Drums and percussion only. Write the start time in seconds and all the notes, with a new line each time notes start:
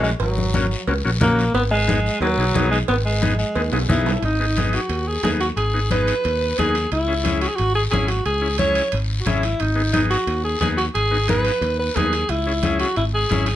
0.04 short guiro
0.20 cowbell, long guiro
0.38 high conga
0.54 high conga, short guiro
0.71 short guiro
0.88 cowbell, long guiro
1.21 high conga, low conga, short guiro
1.39 short guiro
1.55 cowbell, long guiro
1.89 high conga, short guiro
2.06 short guiro
2.22 cowbell, long guiro
2.55 high conga, low timbale, short guiro
2.73 short guiro
2.88 cowbell, long guiro
3.23 high conga, short guiro
3.39 short guiro
3.55 cowbell, long guiro
3.73 high timbale
3.90 high conga, low conga, short guiro
4.06 low timbale, short guiro
4.23 high conga, high timbale, long guiro
4.57 high conga, high timbale, short guiro
4.73 high timbale, short guiro
4.90 high conga, high timbale, long guiro
5.23 high conga, high timbale, low timbale, short guiro
5.41 high timbale, short guiro
5.57 high conga, high timbale, long guiro
5.91 high conga, high timbale, short guiro
6.08 high timbale, short guiro
6.24 high conga, high timbale, long guiro
6.58 high conga, high timbale, short guiro
6.75 high timbale, short guiro
6.92 high conga, high timbale, long guiro
7.25 high conga, high timbale, short guiro
7.41 high timbale, short guiro
7.58 high conga, high timbale, long guiro
7.91 high conga, high timbale, short guiro
8.08 high timbale, short guiro
8.26 high conga, high timbale, long guiro
8.58 high conga, high timbale, short guiro
8.75 high timbale, short guiro
8.92 high conga, high timbale, long guiro
9.26 high conga, high timbale, short guiro
9.43 high timbale, short guiro
9.60 high conga, high timbale, long guiro
9.94 high conga, high timbale, short guiro
10.11 high timbale, short guiro
10.27 high conga, high timbale, long guiro
10.61 high conga, high timbale, short guiro
10.78 high timbale, short guiro
10.95 high conga, high timbale, long guiro
11.28 high conga, high timbale, short guiro
11.45 high timbale, short guiro
11.62 high conga, high timbale, long guiro
11.96 high conga, high timbale, low timbale, short guiro
12.13 high timbale, short guiro
12.29 high conga, high timbale, long guiro
12.63 high conga, high timbale, short guiro
12.80 high timbale, short guiro
12.96 high conga, high timbale, long guiro
13.30 high conga, high timbale, short guiro
13.46 high timbale, short guiro